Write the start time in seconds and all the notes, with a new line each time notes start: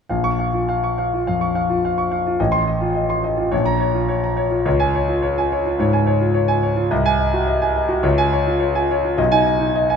0.09 A#1 F5
0.24 C#6
0.39 F5
0.54 F4
0.69 F5
0.83 C#6
0.98 F5
1.14 F4
1.27 F2 F5
1.41 C#6
1.55 F5
1.70 F4
1.85 F5
1.98 C#6
2.12 F5
2.26 F4
2.40 A1 D#5
2.52 C6
2.67 D#5
2.81 F4
2.95 D#5
3.10 C6
3.24 D#5
3.37 F4
3.52 A#1 C#5
3.66 A#5
3.80 C#5
3.94 F4
4.09 C#5
4.24 A#5
4.37 C#5
4.50 F4
4.65 C#2 C#5
4.80 G#5
4.95 C#5
5.08 F4
5.22 C#5
5.38 G#5
5.52 C#5
5.66 F4
5.79 G#2 C#5
5.93 G#5
6.07 C#5
6.21 F4
6.34 C#5
6.48 G#5
6.63 C#5
6.76 F4
6.91 C2 D#5
7.06 G#5
7.19 D#5
7.33 F#4
7.47 D#5
7.62 G#5
7.75 D#5
7.88 F#4
8.03 C#2 C#5
8.18 G#5
8.33 C#5
8.47 F4
8.60 C#5
8.75 G#5
8.91 C#5
9.04 F4
9.18 B1 D#5
9.31 D#4 G#5
9.47 D#5
9.60 D#4
9.76 D#5
9.90 G#5